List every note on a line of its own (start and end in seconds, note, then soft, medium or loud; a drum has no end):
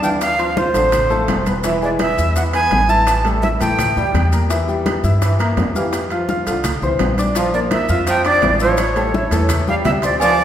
0.00 0.69 D2 medium
0.00 0.22 E3 medium
0.00 0.32 D4 medium
0.00 0.32 F5 medium
0.00 0.09 G5 medium
0.00 0.32 F6 medium
0.00 high bongo soft
0.00 high conga soft
0.00 maracas medium
0.21 0.59 F5 loud
0.21 high bongo medium
0.21 high conga soft
0.21 high timbale medium
0.21 maracas medium
0.38 0.57 F3 medium
0.38 0.53 C4 medium
0.38 0.54 C5 medium
0.38 0.54 C6 medium
0.38 high conga soft
0.38 high timbale medium
0.38 maracas soft
0.56 0.71 F4 medium
0.56 1.47 C5 medium
0.56 0.71 F5 medium
0.56 0.71 F6 medium
0.56 high bongo medium
0.56 high conga loud
0.56 maracas soft
0.74 1.24 A1 medium
0.74 0.93 D3 medium
0.74 1.04 C4 medium
0.74 1.04 C5 medium
0.74 1.04 C6 medium
0.74 high bongo soft
0.74 high timbale medium
0.74 maracas medium
0.92 high bongo medium
0.92 high conga soft
0.92 low conga medium
0.92 high timbale loud
0.92 maracas medium
1.10 1.40 F3 medium
1.10 1.40 A3 medium
1.10 1.40 A4 medium
1.10 1.40 A5 medium
1.10 high bongo soft
1.10 high conga soft
1.10 maracas soft
1.27 2.12 E1 medium
1.27 high bongo soft
1.27 low bongo medium
1.27 high conga medium
1.27 high timbale loud
1.27 low timbale medium
1.27 maracas soft
1.46 1.61 B3 medium
1.46 1.61 B4 medium
1.46 1.62 B5 medium
1.46 high bongo soft
1.46 high conga medium
1.46 high timbale medium
1.46 maracas medium
1.64 1.79 E3 medium
1.64 2.06 E3 medium
1.64 1.79 E4 medium
1.64 1.79 E5 medium
1.64 high bongo medium
1.64 high conga soft
1.64 high timbale medium
1.64 maracas medium
1.82 2.12 G#3 medium
1.82 2.12 G#4 medium
1.82 1.90 D5 medium
1.82 2.12 G#5 medium
1.82 high conga soft
1.82 maracas soft
1.99 2.34 E5 loud
1.99 high bongo medium
1.99 high conga medium
1.99 high timbale loud
1.99 maracas soft
2.17 2.68 E2 loud
2.17 2.47 E4 medium
2.17 2.47 E5 medium
2.17 2.48 E6 medium
2.17 high bongo soft
2.17 high conga soft
2.17 maracas medium
2.36 2.55 E3 medium
2.36 2.43 F#5 medium
2.36 high bongo medium
2.36 high conga soft
2.36 high timbale medium
2.36 maracas medium
2.53 2.83 B3 medium
2.53 2.83 B4 medium
2.53 2.91 G#5 loud
2.53 2.83 B5 medium
2.53 high bongo soft
2.53 high conga soft
2.53 high timbale medium
2.53 maracas soft
2.71 3.55 A1 medium
2.71 2.81 D3 medium
2.71 high bongo soft
2.71 low bongo medium
2.71 high conga medium
2.71 high timbale medium
2.71 maracas soft
2.89 3.08 E3 medium
2.89 3.18 E4 medium
2.89 3.18 E5 medium
2.89 3.25 A5 loud
2.89 3.19 E6 medium
2.89 high bongo soft
2.89 high conga soft
2.89 maracas medium
3.07 high bongo medium
3.07 high timbale medium
3.07 maracas medium
3.24 3.43 G3 medium
3.24 3.40 A3 medium
3.24 3.40 A4 medium
3.24 3.40 A5 medium
3.24 high conga soft
3.24 high timbale medium
3.24 maracas soft
3.42 3.58 E4 medium
3.42 3.48 E5 medium
3.42 3.58 E5 medium
3.42 3.58 E6 medium
3.42 high bongo medium
3.42 high conga medium
3.42 maracas soft
3.60 3.94 A2 loud
3.60 3.79 E3 medium
3.60 3.90 A3 medium
3.60 3.90 A4 medium
3.60 4.28 G5 loud
3.60 3.91 A5 medium
3.60 high bongo soft
3.60 high timbale medium
3.60 maracas medium
3.79 high bongo medium
3.79 high conga soft
3.79 low conga medium
3.79 high timbale medium
3.79 maracas medium
3.96 4.13 F2 medium
3.96 4.26 G3 medium
3.96 4.26 G4 medium
3.96 4.26 G5 medium
3.96 high bongo soft
3.96 high conga soft
3.96 low conga medium
3.96 maracas soft
4.14 4.98 E2 medium
4.14 high bongo soft
4.14 low bongo medium
4.14 high conga medium
4.14 high timbale medium
4.14 maracas soft
4.32 4.47 A#3 medium
4.32 4.48 A#4 medium
4.32 4.48 A#5 medium
4.32 high bongo soft
4.32 high timbale medium
4.32 maracas medium
4.49 4.92 E3 medium
4.49 4.65 E3 medium
4.49 4.65 E4 medium
4.49 4.65 E5 medium
4.49 high bongo medium
4.49 high conga soft
4.49 high timbale medium
4.49 maracas medium
4.68 4.97 G3 medium
4.68 4.98 G4 medium
4.68 4.98 G5 medium
4.68 high conga soft
4.68 maracas soft
4.86 high bongo medium
4.86 high conga medium
4.86 high timbale loud
4.86 maracas soft
5.03 5.53 G2 medium
5.03 5.33 E4 medium
5.03 5.33 E5 medium
5.03 5.33 E6 medium
5.03 high bongo soft
5.03 high conga soft
5.03 maracas medium
5.21 5.41 E3 medium
5.21 high bongo medium
5.21 high conga soft
5.21 high timbale medium
5.21 maracas medium
5.39 5.69 A#3 medium
5.39 5.69 A#4 medium
5.39 5.69 A#5 medium
5.39 high bongo soft
5.39 high conga soft
5.39 high timbale medium
5.39 maracas soft
5.57 6.41 F2 medium
5.57 5.67 D3 medium
5.57 high bongo soft
5.57 low bongo medium
5.57 high conga medium
5.57 high timbale medium
5.57 low timbale medium
5.57 maracas soft
5.75 5.94 E3 medium
5.75 6.05 G4 medium
5.75 6.05 F5 medium
5.75 6.05 F6 medium
5.75 high bongo soft
5.75 high conga soft
5.75 maracas medium
5.93 high bongo medium
5.93 high conga soft
5.93 high timbale medium
5.93 maracas medium
6.10 6.30 F3 medium
6.10 6.26 F4 medium
6.10 6.26 F5 medium
6.10 6.26 F6 medium
6.10 high conga soft
6.10 high timbale medium
6.10 maracas soft
6.29 6.44 F4 medium
6.29 6.44 F5 medium
6.29 6.44 F6 medium
6.29 high bongo medium
6.29 high conga medium
6.29 maracas soft
6.46 6.80 C2 medium
6.46 6.65 D3 medium
6.46 6.76 F4 medium
6.46 6.76 F5 medium
6.46 6.77 F6 medium
6.46 high bongo soft
6.46 high timbale medium
6.46 maracas medium
6.64 high bongo medium
6.64 high conga soft
6.64 low conga medium
6.64 high timbale loud
6.64 maracas medium
6.82 6.99 C2 medium
6.82 7.12 E3 medium
6.82 7.12 C4 medium
6.82 7.12 C5 medium
6.82 7.12 C6 medium
6.82 high bongo soft
6.82 high conga soft
6.82 low conga medium
6.82 maracas soft
6.99 7.83 A#1 medium
6.99 high bongo soft
6.99 low bongo medium
6.99 high conga medium
6.99 high timbale loud
6.99 low timbale medium
6.99 maracas soft
7.18 7.33 D4 medium
7.18 7.33 D5 medium
7.18 7.33 D6 medium
7.18 high bongo soft
7.18 high timbale medium
7.18 maracas medium
7.35 7.77 F3 medium
7.35 7.51 F3 medium
7.35 7.51 F4 medium
7.35 7.51 F5 medium
7.35 high bongo medium
7.35 high conga soft
7.35 high timbale medium
7.35 maracas medium
7.54 7.83 A#3 medium
7.54 7.83 A#4 medium
7.54 7.60 D5 medium
7.54 7.83 A#5 medium
7.54 high conga soft
7.54 maracas soft
7.71 8.05 E5 medium
7.71 high bongo medium
7.71 high conga medium
7.71 high timbale loud
7.71 maracas soft
7.89 8.39 F2 loud
7.89 8.19 F4 medium
7.89 8.19 F5 medium
7.89 8.19 F6 medium
7.89 high bongo soft
7.89 high conga soft
7.89 maracas medium
8.07 8.26 F3 medium
8.07 8.24 G5 medium
8.07 high bongo medium
8.07 high conga soft
8.07 high timbale medium
8.07 maracas medium
8.25 8.55 D4 medium
8.25 8.59 D5 loud
8.25 8.55 D5 medium
8.25 8.55 D6 medium
8.25 high bongo soft
8.25 high conga soft
8.25 high timbale medium
8.25 maracas soft
8.42 9.26 A1 medium
8.42 8.53 E3 medium
8.42 high bongo soft
8.42 low bongo medium
8.42 high conga medium
8.42 high timbale medium
8.42 low timbale medium
8.42 maracas soft
8.60 8.80 F3 medium
8.60 8.90 E4 medium
8.60 9.64 C#5 medium
8.60 8.90 E5 medium
8.60 8.90 E6 medium
8.60 high bongo soft
8.60 high conga soft
8.60 maracas medium
8.77 high bongo medium
8.77 high conga soft
8.77 high timbale medium
8.77 maracas medium
8.96 9.15 G3 medium
8.96 9.11 A3 medium
8.96 9.11 A4 medium
8.96 9.11 A5 medium
8.96 high conga soft
8.96 high timbale medium
8.96 maracas soft
9.14 9.29 E4 medium
9.14 9.29 E5 medium
9.14 9.29 E6 medium
9.14 high bongo medium
9.14 high conga medium
9.14 maracas soft
9.31 9.81 E2 medium
9.31 9.51 E3 medium
9.31 9.61 A3 medium
9.31 9.61 A4 medium
9.31 9.62 A5 medium
9.31 high bongo soft
9.31 high timbale medium
9.31 maracas medium
9.49 high bongo medium
9.49 high conga soft
9.49 low conga medium
9.49 high timbale loud
9.49 maracas loud
9.67 9.97 G3 medium
9.67 9.98 G3 medium
9.67 9.97 G4 medium
9.67 9.74 F5 loud
9.67 9.98 G5 medium
9.67 high bongo soft
9.67 high conga medium
9.67 maracas soft
9.85 10.44 D2 medium
9.85 9.91 E5 loud
9.85 high bongo soft
9.85 low bongo medium
9.85 low conga loud
9.85 high timbale loud
9.85 low timbale medium
9.85 maracas soft
10.02 10.18 C4 medium
10.02 10.18 C5 medium
10.02 10.19 D5 medium
10.02 10.18 C6 medium
10.02 high bongo soft
10.02 low conga medium
10.02 high timbale medium
10.02 maracas medium
10.19 10.44 F3 medium
10.19 10.44 F3 loud
10.19 10.44 F4 medium
10.19 10.44 D5 loud
10.19 10.44 F5 medium
10.19 cowbell loud
10.19 high conga soft
10.19 low agogo medium
10.19 maracas medium
10.39 high conga soft
10.39 maracas soft